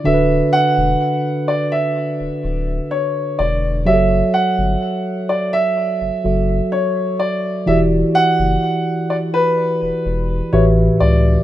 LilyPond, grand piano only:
\new Staff \with { instrumentName = "Grand piano" } { \time 4/4 \key e \dorian \tempo 4 = 63 e''8 fis''4 d''16 e''4~ e''16 cis''8 d''8 | e''8 fis''4 d''16 e''4~ e''16 cis''8 d''8 | e''8 fis''4 d''16 b'4~ b'16 cis''8 d''8 | }